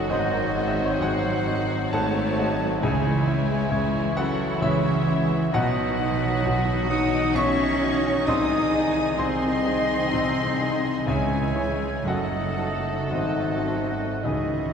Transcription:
Already playing: grand piano F#1 F#2 D#4 F#4 G#4 D#5 F#5 G#5, bassoon F#3, violin section F#4
0.08 double bass section G#1, grand piano G#1 G#2 C5 D#5, french horn section D#3, viola section D#3, cello section D#3, flute F#4, oboe C5, violin section D#5
0.12 grand piano D#4
0.34 viola section F#3
0.56 viola section G#3, grand piano C4 F#4 D#5
0.67 grand piano E5
0.75 grand piano D#5
0.79 viola section C4
0.85 grand piano C#5
0.93 grand piano D#5
0.99 grand piano G#1 G#2 F#5, french horn section F#3, cello section F#3, viola section G#3, flute C5, violin section F#5
1.03 grand piano F#4 D#5
1.25 viola section F#3
1.47 viola section D#3, grand piano C4 F#4 D#5
1.70 viola section F#3
1.90 grand piano G#1 G#2 A4 F#5 A5, viola section G#3, french horn section A3, cello section A3, flute C#5, violin section A5
2.15 viola section C4
2.38 viola section G#3, grand piano C4 F#4 D#5
2.61 viola section F#3
2.81 double bass section C#2, grand piano C#2 C#3 G#4 E5 G#5, viola section C#3 E3, bassoon E3, french horn section G#3, cello section G#3, violin section E4 G#5, oboe C#5, flute C#5
3.06 viola section E3
3.27 viola section G#3, grand piano C#4 E4 E5
3.49 viola section C#4
3.71 grand piano C#2 C#3, viola section G#3
3.94 viola section E3
4.15 viola section C#3, french horn section F#3, cello section F#3, grand piano C#4 E4 F#4 E5 F#5, flute A4, violin section F#5
4.39 viola section E3
4.61 grand piano C#2 C#3 E4 C#5 E5, french horn section E3, cello section E3, viola section G#3, flute G#4, violin section E5
4.84 viola section C#4
5.06 viola section G#3, grand piano C#4 E4 E5
5.30 viola section E3
5.51 double bass section B1, grand piano B1 B2 F#5, viola section D#3 D#4, french horn section F#3, bassoon F#3, cello section F#3, violin section F#4 F#5, flute B4, oboe D#5
5.55 grand piano F#4 D#5
6.00 grand piano D#4 F#4 D#5
6.46 grand piano B1 B2
6.88 french horn section D#4, grand piano D#4 F#4 D#5 D#6, cello section D#4, flute F#5, violin section D#6
7.34 grand piano B1 B2 C#5 C#6, french horn section C#4, cello section C#4, flute E5, violin section C#6
7.82 grand piano D#4 F#4 D#5
8.26 double bass section C2, grand piano C2 C3 D#5 C6 D#6, bassoon G#3, cello section D#4, french horn section D#4, violin section G#4 D#6, flute G#5
8.74 grand piano D#4 G#4 D#5
9.17 grand piano C2 C3 C5 G#5 C6, french horn section C4, cello section C4, flute D#5, violin section C6
9.66 grand piano D#4 G#4 D#5
10.13 grand piano C2 C3
10.61 grand piano D#4 G#4 D#5
11.07 grand piano C#2 C#3 G#4 E5 G#5, double bass section C#2, viola section E3 C#4, cello section G#3, french horn section G#3, flute C#5, oboe E5, violin section G#5
11.55 grand piano E4 G#4 C#5
12.05 grand piano F#1 F#2 F#4 F#5, double bass section F#1, viola section F#3 D#4, cello section F#3, french horn section F#3, bassoon A3, violin section A4 F#5, flute A4, oboe D#5
12.09 grand piano D#5
12.57 grand piano F#4 A4 D#5
13.10 grand piano G#1 G#2 D#4 C5 D#5, double bass section G#1, cello section D#3, french horn section D#3, viola section C4, flute F#4, violin section D#5, oboe F#5
13.67 grand piano F#4 A4 C5
14.23 double bass section C#2, grand piano C#2 C#3 D#4 G#4 D#5, timpani C#3, cello section D#3, french horn section D#3, viola section E3 C#4, bassoon G#3, flute F#4, violin section G#4 D#5, oboe E5

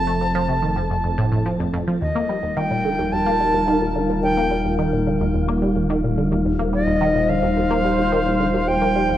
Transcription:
Already playing: sub bass F1, analog synth pad F3 C4 A4, synth texture A3 A6, flute A5
0.07 synth arpeggio sound A3
0.21 synth arpeggio sound F2
0.35 synth arpeggio sound F3
0.49 synth arpeggio sound C3
0.63 synth arpeggio sound D#3
0.76 synth arpeggio sound F2
0.90 synth arpeggio sound F2
1.04 synth arpeggio sound F2
1.18 synth arpeggio sound A2
1.32 synth arpeggio sound A2
1.46 synth arpeggio sound F3
1.60 synth arpeggio sound F2
1.74 synth arpeggio sound F2
1.87 synth arpeggio sound F3
2.01 sub bass D#1, synth arpeggio sound D#2, synth texture F3 F4, analog synth pad G3 D#4 A#4, flute D#5
2.15 synth arpeggio sound A#3
2.29 synth arpeggio sound G3
2.43 synth arpeggio sound D#2
2.57 synth arpeggio sound D#3, flute G5
2.71 synth arpeggio sound A#2
2.85 synth arpeggio sound D3
2.99 synth arpeggio sound D#2
3.12 synth arpeggio sound D#2, flute A5
3.26 synth arpeggio sound A#3
3.40 synth arpeggio sound G3
3.54 synth arpeggio sound D#2
3.68 synth arpeggio sound D#3
3.82 synth arpeggio sound A#2
3.96 synth arpeggio sound D3
4.10 synth arpeggio sound D#2
4.23 synth arpeggio sound D#2, flute G5
4.37 synth arpeggio sound A#3
4.51 synth arpeggio sound G3
4.65 synth arpeggio sound D#2
4.79 synth arpeggio sound D#3
4.93 synth arpeggio sound A#2
5.07 synth arpeggio sound D3
5.21 synth arpeggio sound D#2
5.34 synth arpeggio sound D#2
5.48 synth arpeggio sound A#3
5.62 synth arpeggio sound G3
5.76 synth arpeggio sound D#2
5.90 synth arpeggio sound D#3
6.04 synth arpeggio sound A#2
6.18 synth arpeggio sound D3
6.32 synth arpeggio sound D#2
6.46 synth arpeggio sound D#2, analog synth pad C5
6.59 synth arpeggio sound A#3
6.73 synth arpeggio sound G3, flute D#5
6.87 synth arpeggio sound D#2
7.01 synth arpeggio sound D#3
7.15 synth arpeggio sound A#2
7.29 synth arpeggio sound D3, flute F5
7.43 synth arpeggio sound D#2
7.57 synth arpeggio sound D#2
7.71 synth arpeggio sound A#3
7.85 synth arpeggio sound G3
7.98 synth arpeggio sound D#2
8.12 synth arpeggio sound D#3
8.26 synth arpeggio sound A#2
8.40 synth arpeggio sound D3
8.54 synth arpeggio sound D#2
8.68 synth arpeggio sound D#2, flute G5
8.82 synth arpeggio sound A#3
8.96 synth arpeggio sound G3
9.10 synth arpeggio sound D#2

